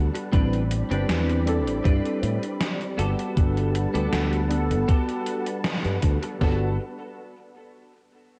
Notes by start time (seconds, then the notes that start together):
Already playing: G3 B3 D4 A4 B4 F#5 A5
0.15 muted clean electric guitar stroke, closed hi-hat
0.32 A1 G3 C4 D4 E4 G4 B4 D5 B5, kick, closed hi-hat
0.53 closed hi-hat
0.71 closed hi-hat
0.90 G1 G3 C4 D4 E4 G4 B4, closed hi-hat
1.09 E2, snare, closed hi-hat
1.29 closed hi-hat
1.45 G3 C4 D4 E4 A4, closed hi-hat
1.67 A1, closed hi-hat
1.84 G2 C4 D4 G4 B4, kick, closed hi-hat
2.05 closed hi-hat
2.23 A2, closed hi-hat
2.43 closed hi-hat
2.61 snare, closed hi-hat
2.81 closed hi-hat
2.98 G1 B3 F#4 G4 A4 B4 F#5 A5, closed hi-hat
3.19 closed hi-hat
3.36 G1 G3 B3 D4 A4 F#5, kick, closed hi-hat
3.57 closed hi-hat
3.75 closed hi-hat
3.94 D2 G3 B3 D4 F#4 G4 A4 F#5, closed hi-hat
4.13 D2, snare, closed hi-hat
4.33 closed hi-hat
4.49 G3 B3 D4 A4 F#5, closed hi-hat
4.71 G1, closed hi-hat
4.88 B3 F#4 G4 A4, kick, closed hi-hat
5.09 closed hi-hat
5.27 closed hi-hat
5.47 closed hi-hat
5.64 snare, closed hi-hat
5.85 G2, closed hi-hat
6.02 D2, muted clean electric guitar stroke, kick, closed hi-hat
6.22 muted clean electric guitar stroke, closed hi-hat
6.38 G1 G3 B3 D4 F#4 A4 B4 F#5, kick, snare
6.43 A4